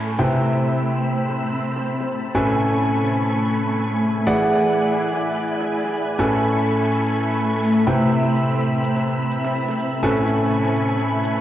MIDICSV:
0, 0, Header, 1, 6, 480
1, 0, Start_track
1, 0, Tempo, 480000
1, 428, Time_signature, 4, 2, 24, 8
1, 11407, End_track
2, 0, Start_track
2, 0, Title_t, "Analog synth pad"
2, 0, Program_c, 0, 89
2, 0, Note_on_c, 0, 69, 69
2, 0, Note_on_c, 0, 80, 65
2, 0, Note_on_c, 0, 83, 67
2, 0, Note_on_c, 0, 85, 78
2, 171, Note_off_c, 0, 69, 0
2, 171, Note_off_c, 0, 80, 0
2, 171, Note_off_c, 0, 83, 0
2, 172, Note_off_c, 0, 85, 0
2, 187, Note_on_c, 0, 83, 72
2, 187, Note_on_c, 0, 88, 89
2, 188, Note_on_c, 0, 60, 78
2, 2326, Note_off_c, 0, 83, 0
2, 2326, Note_off_c, 0, 88, 0
2, 2327, Note_off_c, 0, 60, 0
2, 2347, Note_on_c, 0, 69, 71
2, 2347, Note_on_c, 0, 80, 66
2, 2347, Note_on_c, 0, 85, 77
2, 2348, Note_on_c, 0, 83, 64
2, 4249, Note_off_c, 0, 69, 0
2, 4249, Note_off_c, 0, 83, 0
2, 4249, Note_off_c, 0, 85, 0
2, 4269, Note_on_c, 0, 64, 72
2, 4269, Note_on_c, 0, 74, 65
2, 4269, Note_on_c, 0, 90, 80
2, 6169, Note_off_c, 0, 74, 0
2, 6170, Note_off_c, 0, 64, 0
2, 6170, Note_off_c, 0, 90, 0
2, 6189, Note_on_c, 0, 83, 66
2, 6189, Note_on_c, 0, 85, 82
2, 6190, Note_on_c, 0, 69, 71
2, 7828, Note_off_c, 0, 80, 0
2, 7852, Note_off_c, 0, 69, 0
2, 7852, Note_off_c, 0, 83, 0
2, 7852, Note_off_c, 0, 85, 0
2, 7868, Note_on_c, 0, 60, 78
2, 7868, Note_on_c, 0, 83, 76
2, 7868, Note_on_c, 0, 88, 88
2, 10006, Note_off_c, 0, 83, 0
2, 10007, Note_off_c, 0, 60, 0
2, 10007, Note_off_c, 0, 88, 0
2, 10028, Note_on_c, 0, 69, 71
2, 10028, Note_on_c, 0, 80, 67
2, 10028, Note_on_c, 0, 85, 79
2, 10029, Note_on_c, 0, 83, 65
2, 11407, Note_off_c, 0, 69, 0
2, 11407, Note_off_c, 0, 80, 0
2, 11407, Note_off_c, 0, 83, 0
2, 11407, Note_off_c, 0, 85, 0
2, 11407, End_track
3, 0, Start_track
3, 0, Title_t, "Grand piano"
3, 0, Program_c, 1, 0
3, 0, Note_on_c, 1, 45, 72
3, 0, Note_on_c, 1, 61, 65
3, 0, Note_on_c, 1, 69, 64
3, 0, Note_on_c, 1, 71, 64
3, 0, Note_on_c, 1, 80, 79
3, 163, Note_off_c, 1, 45, 0
3, 163, Note_off_c, 1, 61, 0
3, 163, Note_off_c, 1, 69, 0
3, 163, Note_off_c, 1, 71, 0
3, 163, Note_off_c, 1, 80, 0
3, 188, Note_on_c, 1, 48, 68
3, 188, Note_on_c, 1, 64, 64
3, 188, Note_on_c, 1, 71, 59
3, 188, Note_on_c, 1, 72, 61
3, 188, Note_on_c, 1, 79, 75
3, 2323, Note_off_c, 1, 48, 0
3, 2323, Note_off_c, 1, 64, 0
3, 2323, Note_off_c, 1, 71, 0
3, 2323, Note_off_c, 1, 72, 0
3, 2323, Note_off_c, 1, 79, 0
3, 2348, Note_on_c, 1, 45, 76
3, 2348, Note_on_c, 1, 61, 67
3, 2348, Note_on_c, 1, 69, 65
3, 2348, Note_on_c, 1, 71, 66
3, 2348, Note_on_c, 1, 80, 80
3, 4243, Note_off_c, 1, 45, 0
3, 4243, Note_off_c, 1, 61, 0
3, 4243, Note_off_c, 1, 69, 0
3, 4243, Note_off_c, 1, 71, 0
3, 4244, Note_off_c, 1, 80, 0
3, 4268, Note_on_c, 1, 52, 70
3, 4268, Note_on_c, 1, 64, 68
3, 4268, Note_on_c, 1, 68, 69
3, 4268, Note_on_c, 1, 74, 70
3, 4268, Note_on_c, 1, 78, 79
3, 6163, Note_off_c, 1, 52, 0
3, 6163, Note_off_c, 1, 78, 0
3, 6164, Note_off_c, 1, 64, 0
3, 6164, Note_off_c, 1, 68, 0
3, 6164, Note_off_c, 1, 74, 0
3, 6189, Note_on_c, 1, 45, 77
3, 6189, Note_on_c, 1, 61, 71
3, 6189, Note_on_c, 1, 69, 66
3, 6189, Note_on_c, 1, 71, 67
3, 6189, Note_on_c, 1, 80, 79
3, 7844, Note_off_c, 1, 45, 0
3, 7844, Note_off_c, 1, 61, 0
3, 7844, Note_off_c, 1, 69, 0
3, 7844, Note_off_c, 1, 71, 0
3, 7844, Note_off_c, 1, 80, 0
3, 7868, Note_on_c, 1, 48, 73
3, 7868, Note_on_c, 1, 79, 76
3, 7869, Note_on_c, 1, 64, 65
3, 7869, Note_on_c, 1, 71, 63
3, 7869, Note_on_c, 1, 72, 63
3, 10003, Note_off_c, 1, 48, 0
3, 10003, Note_off_c, 1, 79, 0
3, 10004, Note_off_c, 1, 64, 0
3, 10004, Note_off_c, 1, 71, 0
3, 10004, Note_off_c, 1, 72, 0
3, 10028, Note_on_c, 1, 45, 76
3, 10028, Note_on_c, 1, 61, 70
3, 10028, Note_on_c, 1, 69, 68
3, 10028, Note_on_c, 1, 71, 67
3, 10028, Note_on_c, 1, 80, 83
3, 11407, Note_off_c, 1, 45, 0
3, 11407, Note_off_c, 1, 61, 0
3, 11407, Note_off_c, 1, 69, 0
3, 11407, Note_off_c, 1, 71, 0
3, 11407, Note_off_c, 1, 80, 0
3, 11407, End_track
4, 0, Start_track
4, 0, Title_t, "Ambient pad"
4, 0, Program_c, 2, 92
4, 0, Note_on_c, 2, 57, 89
4, 0, Note_on_c, 2, 76, 88
4, 0, Note_on_c, 2, 83, 77
4, 188, Note_off_c, 2, 57, 0
4, 189, Note_on_c, 2, 60, 72
4, 903, Note_on_c, 2, 81, 84
4, 2348, Note_on_c, 2, 57, 73
4, 2349, Note_off_c, 2, 60, 0
4, 2349, Note_off_c, 2, 81, 0
4, 2650, Note_on_c, 2, 80, 88
4, 4268, Note_off_c, 2, 57, 0
4, 6190, Note_on_c, 2, 57, 93
4, 7868, Note_off_c, 2, 80, 0
4, 7869, Note_off_c, 2, 57, 0
4, 7869, Note_on_c, 2, 60, 79
4, 10028, Note_on_c, 2, 57, 76
4, 10029, Note_off_c, 2, 60, 0
4, 10906, Note_on_c, 2, 80, 75
4, 11407, Note_off_c, 2, 57, 0
4, 11407, Note_off_c, 2, 76, 0
4, 11407, Note_off_c, 2, 80, 0
4, 11407, Note_off_c, 2, 83, 0
4, 11407, End_track
5, 0, Start_track
5, 0, Title_t, "Downlifter"
5, 0, Program_c, 3, 103
5, 0, Note_on_c, 3, 60, 65
5, 2348, Note_off_c, 3, 60, 0
5, 11407, End_track
6, 0, Start_track
6, 0, Title_t, "Drums"
6, 428, Note_on_c, 9, 82, 75
6, 434, Note_off_c, 9, 82, 0
6, 434, Note_on_c, 9, 82, 37
6, 534, Note_off_c, 9, 82, 0
6, 668, Note_on_c, 9, 82, 65
6, 674, Note_off_c, 9, 82, 0
6, 674, Note_on_c, 9, 82, 68
6, 774, Note_off_c, 9, 82, 0
6, 811, Note_on_c, 9, 82, 30
6, 907, Note_off_c, 9, 82, 0
6, 907, Note_on_c, 9, 82, 80
6, 914, Note_off_c, 9, 82, 0
6, 914, Note_on_c, 9, 82, 41
6, 1014, Note_off_c, 9, 82, 0
6, 1154, Note_on_c, 9, 82, 72
6, 1254, Note_off_c, 9, 82, 0
6, 1284, Note_on_c, 9, 38, 37
6, 1384, Note_off_c, 9, 38, 0
6, 1634, Note_on_c, 9, 82, 69
6, 1734, Note_off_c, 9, 82, 0
6, 1764, Note_on_c, 9, 38, 41
6, 1864, Note_off_c, 9, 38, 0
6, 1867, Note_on_c, 9, 82, 80
6, 1874, Note_off_c, 9, 82, 0
6, 1874, Note_on_c, 9, 82, 37
6, 1974, Note_off_c, 9, 82, 0
6, 2004, Note_on_c, 9, 38, 41
6, 2104, Note_off_c, 9, 38, 0
6, 2114, Note_on_c, 9, 82, 67
6, 2214, Note_off_c, 9, 82, 0
6, 2251, Note_on_c, 9, 82, 29
6, 2351, Note_off_c, 9, 82, 0
6, 2593, Note_on_c, 9, 82, 65
6, 2693, Note_off_c, 9, 82, 0
6, 2828, Note_on_c, 9, 82, 81
6, 2834, Note_off_c, 9, 82, 0
6, 2834, Note_on_c, 9, 82, 38
6, 2934, Note_off_c, 9, 82, 0
6, 2964, Note_on_c, 9, 38, 32
6, 3064, Note_off_c, 9, 38, 0
6, 3074, Note_on_c, 9, 82, 69
6, 3174, Note_off_c, 9, 82, 0
6, 3205, Note_on_c, 9, 42, 41
6, 3210, Note_on_c, 9, 82, 30
6, 3305, Note_off_c, 9, 42, 0
6, 3308, Note_off_c, 9, 82, 0
6, 3308, Note_on_c, 9, 82, 77
6, 3314, Note_off_c, 9, 82, 0
6, 3314, Note_on_c, 9, 82, 37
6, 3414, Note_off_c, 9, 82, 0
6, 3548, Note_on_c, 9, 82, 60
6, 3554, Note_off_c, 9, 82, 0
6, 3554, Note_on_c, 9, 82, 68
6, 3654, Note_off_c, 9, 82, 0
6, 3690, Note_on_c, 9, 82, 29
6, 3787, Note_on_c, 9, 46, 72
6, 3790, Note_off_c, 9, 82, 0
6, 3794, Note_on_c, 9, 82, 37
6, 3887, Note_off_c, 9, 46, 0
6, 3894, Note_off_c, 9, 82, 0
6, 3931, Note_on_c, 9, 82, 20
6, 4028, Note_off_c, 9, 82, 0
6, 4028, Note_on_c, 9, 82, 62
6, 4034, Note_off_c, 9, 82, 0
6, 4034, Note_on_c, 9, 82, 69
6, 4134, Note_off_c, 9, 82, 0
6, 4171, Note_on_c, 9, 82, 30
6, 4271, Note_off_c, 9, 82, 0
6, 4274, Note_on_c, 9, 82, 37
6, 4374, Note_off_c, 9, 82, 0
6, 4411, Note_on_c, 9, 82, 20
6, 4508, Note_off_c, 9, 82, 0
6, 4508, Note_on_c, 9, 82, 64
6, 4514, Note_off_c, 9, 82, 0
6, 4514, Note_on_c, 9, 82, 66
6, 4614, Note_off_c, 9, 82, 0
6, 4651, Note_on_c, 9, 82, 30
6, 4748, Note_off_c, 9, 82, 0
6, 4748, Note_on_c, 9, 82, 82
6, 4754, Note_off_c, 9, 82, 0
6, 4754, Note_on_c, 9, 82, 40
6, 4854, Note_off_c, 9, 82, 0
6, 4989, Note_on_c, 9, 82, 64
6, 4994, Note_off_c, 9, 82, 0
6, 4994, Note_on_c, 9, 82, 70
6, 5094, Note_off_c, 9, 82, 0
6, 5125, Note_on_c, 9, 38, 36
6, 5131, Note_on_c, 9, 82, 28
6, 5225, Note_off_c, 9, 38, 0
6, 5229, Note_off_c, 9, 82, 0
6, 5229, Note_on_c, 9, 82, 77
6, 5234, Note_off_c, 9, 82, 0
6, 5234, Note_on_c, 9, 82, 38
6, 5334, Note_off_c, 9, 82, 0
6, 5469, Note_on_c, 9, 82, 62
6, 5475, Note_off_c, 9, 82, 0
6, 5475, Note_on_c, 9, 82, 71
6, 5575, Note_off_c, 9, 82, 0
6, 5606, Note_on_c, 9, 38, 40
6, 5611, Note_on_c, 9, 82, 28
6, 5706, Note_off_c, 9, 38, 0
6, 5709, Note_off_c, 9, 82, 0
6, 5709, Note_on_c, 9, 82, 80
6, 5714, Note_off_c, 9, 82, 0
6, 5714, Note_on_c, 9, 82, 40
6, 5814, Note_off_c, 9, 82, 0
6, 5846, Note_on_c, 9, 38, 40
6, 5851, Note_on_c, 9, 82, 20
6, 5946, Note_off_c, 9, 38, 0
6, 5950, Note_off_c, 9, 82, 0
6, 5950, Note_on_c, 9, 82, 64
6, 5954, Note_off_c, 9, 82, 0
6, 5954, Note_on_c, 9, 82, 67
6, 6054, Note_off_c, 9, 82, 0
6, 6091, Note_on_c, 9, 82, 30
6, 6191, Note_off_c, 9, 82, 0
6, 6195, Note_on_c, 9, 82, 39
6, 6295, Note_off_c, 9, 82, 0
6, 6326, Note_on_c, 9, 42, 40
6, 6332, Note_on_c, 9, 82, 21
6, 6426, Note_off_c, 9, 42, 0
6, 6429, Note_off_c, 9, 82, 0
6, 6429, Note_on_c, 9, 82, 64
6, 6434, Note_off_c, 9, 82, 0
6, 6434, Note_on_c, 9, 82, 70
6, 6534, Note_off_c, 9, 82, 0
6, 6571, Note_on_c, 9, 82, 31
6, 6668, Note_off_c, 9, 82, 0
6, 6668, Note_on_c, 9, 82, 80
6, 6674, Note_off_c, 9, 82, 0
6, 6674, Note_on_c, 9, 82, 40
6, 6774, Note_off_c, 9, 82, 0
6, 6805, Note_on_c, 9, 38, 34
6, 6811, Note_on_c, 9, 82, 21
6, 6905, Note_off_c, 9, 38, 0
6, 6908, Note_off_c, 9, 82, 0
6, 6908, Note_on_c, 9, 82, 61
6, 6914, Note_off_c, 9, 82, 0
6, 6914, Note_on_c, 9, 82, 72
6, 7014, Note_off_c, 9, 82, 0
6, 7045, Note_on_c, 9, 42, 40
6, 7050, Note_on_c, 9, 82, 30
6, 7145, Note_off_c, 9, 42, 0
6, 7148, Note_off_c, 9, 82, 0
6, 7148, Note_on_c, 9, 82, 78
6, 7154, Note_off_c, 9, 82, 0
6, 7154, Note_on_c, 9, 82, 39
6, 7254, Note_off_c, 9, 82, 0
6, 7291, Note_on_c, 9, 82, 22
6, 7388, Note_off_c, 9, 82, 0
6, 7388, Note_on_c, 9, 82, 62
6, 7394, Note_off_c, 9, 82, 0
6, 7394, Note_on_c, 9, 82, 72
6, 7494, Note_off_c, 9, 82, 0
6, 7531, Note_on_c, 9, 82, 30
6, 7629, Note_on_c, 9, 46, 71
6, 7631, Note_off_c, 9, 82, 0
6, 7635, Note_on_c, 9, 82, 40
6, 7729, Note_off_c, 9, 46, 0
6, 7735, Note_off_c, 9, 82, 0
6, 7772, Note_on_c, 9, 82, 21
6, 7868, Note_off_c, 9, 82, 0
6, 7868, Note_on_c, 9, 82, 65
6, 7874, Note_off_c, 9, 82, 0
6, 7874, Note_on_c, 9, 82, 69
6, 7974, Note_off_c, 9, 82, 0
6, 8011, Note_on_c, 9, 82, 31
6, 8109, Note_off_c, 9, 82, 0
6, 8109, Note_on_c, 9, 82, 81
6, 8114, Note_off_c, 9, 82, 0
6, 8114, Note_on_c, 9, 82, 42
6, 8214, Note_off_c, 9, 82, 0
6, 8251, Note_on_c, 9, 82, 22
6, 8348, Note_off_c, 9, 82, 0
6, 8348, Note_on_c, 9, 82, 65
6, 8354, Note_off_c, 9, 82, 0
6, 8354, Note_on_c, 9, 82, 69
6, 8454, Note_off_c, 9, 82, 0
6, 8492, Note_on_c, 9, 82, 32
6, 8589, Note_off_c, 9, 82, 0
6, 8589, Note_on_c, 9, 82, 82
6, 8594, Note_off_c, 9, 82, 0
6, 8594, Note_on_c, 9, 82, 41
6, 8694, Note_off_c, 9, 82, 0
6, 8731, Note_on_c, 9, 82, 22
6, 8829, Note_off_c, 9, 82, 0
6, 8829, Note_on_c, 9, 82, 65
6, 8834, Note_off_c, 9, 82, 0
6, 8834, Note_on_c, 9, 82, 80
6, 8934, Note_off_c, 9, 82, 0
6, 8965, Note_on_c, 9, 38, 37
6, 8971, Note_on_c, 9, 82, 32
6, 9065, Note_off_c, 9, 38, 0
6, 9068, Note_off_c, 9, 82, 0
6, 9068, Note_on_c, 9, 82, 77
6, 9074, Note_off_c, 9, 82, 0
6, 9074, Note_on_c, 9, 82, 41
6, 9174, Note_off_c, 9, 82, 0
6, 9211, Note_on_c, 9, 82, 22
6, 9308, Note_off_c, 9, 82, 0
6, 9308, Note_on_c, 9, 82, 61
6, 9314, Note_off_c, 9, 82, 0
6, 9314, Note_on_c, 9, 82, 75
6, 9414, Note_off_c, 9, 82, 0
6, 9445, Note_on_c, 9, 38, 42
6, 9450, Note_on_c, 9, 82, 33
6, 9545, Note_off_c, 9, 38, 0
6, 9548, Note_off_c, 9, 82, 0
6, 9548, Note_on_c, 9, 82, 77
6, 9553, Note_off_c, 9, 82, 0
6, 9553, Note_on_c, 9, 82, 42
6, 9653, Note_off_c, 9, 82, 0
6, 9685, Note_on_c, 9, 38, 42
6, 9690, Note_on_c, 9, 82, 22
6, 9785, Note_off_c, 9, 38, 0
6, 9788, Note_off_c, 9, 82, 0
6, 9788, Note_on_c, 9, 82, 62
6, 9793, Note_off_c, 9, 82, 0
6, 9793, Note_on_c, 9, 82, 73
6, 9893, Note_off_c, 9, 82, 0
6, 9930, Note_on_c, 9, 82, 33
6, 10028, Note_off_c, 9, 82, 0
6, 10028, Note_on_c, 9, 82, 78
6, 10033, Note_off_c, 9, 82, 0
6, 10033, Note_on_c, 9, 82, 42
6, 10133, Note_off_c, 9, 82, 0
6, 10164, Note_on_c, 9, 42, 42
6, 10170, Note_on_c, 9, 82, 23
6, 10264, Note_off_c, 9, 42, 0
6, 10267, Note_off_c, 9, 82, 0
6, 10267, Note_on_c, 9, 82, 66
6, 10274, Note_off_c, 9, 82, 0
6, 10274, Note_on_c, 9, 82, 76
6, 10374, Note_off_c, 9, 82, 0
6, 10410, Note_on_c, 9, 82, 33
6, 10508, Note_off_c, 9, 82, 0
6, 10508, Note_on_c, 9, 82, 84
6, 10514, Note_off_c, 9, 82, 0
6, 10514, Note_on_c, 9, 82, 42
6, 10614, Note_off_c, 9, 82, 0
6, 10644, Note_on_c, 9, 38, 34
6, 10651, Note_on_c, 9, 82, 21
6, 10744, Note_off_c, 9, 38, 0
6, 10747, Note_off_c, 9, 82, 0
6, 10747, Note_on_c, 9, 82, 64
6, 10754, Note_off_c, 9, 82, 0
6, 10754, Note_on_c, 9, 82, 78
6, 10854, Note_off_c, 9, 82, 0
6, 10884, Note_on_c, 9, 42, 41
6, 10891, Note_on_c, 9, 82, 33
6, 10984, Note_off_c, 9, 42, 0
6, 10987, Note_off_c, 9, 82, 0
6, 10987, Note_on_c, 9, 82, 79
6, 10994, Note_off_c, 9, 82, 0
6, 10994, Note_on_c, 9, 82, 41
6, 11094, Note_off_c, 9, 82, 0
6, 11131, Note_on_c, 9, 82, 21
6, 11228, Note_off_c, 9, 82, 0
6, 11228, Note_on_c, 9, 82, 61
6, 11235, Note_off_c, 9, 82, 0
6, 11235, Note_on_c, 9, 82, 75
6, 11335, Note_off_c, 9, 82, 0
6, 11371, Note_on_c, 9, 82, 31
6, 11407, Note_off_c, 9, 82, 0
6, 11407, End_track
0, 0, End_of_file